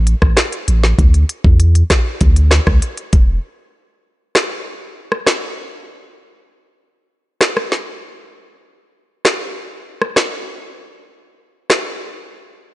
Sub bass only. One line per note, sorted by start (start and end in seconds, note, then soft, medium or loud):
0.00 0.15 A1 loud
0.22 0.35 A1 medium
0.68 0.94 A1 medium
0.99 1.24 D2 loud
1.44 1.83 E2 loud
2.21 2.60 D2 loud
2.67 2.80 C#2 loud
3.13 3.39 E1 loud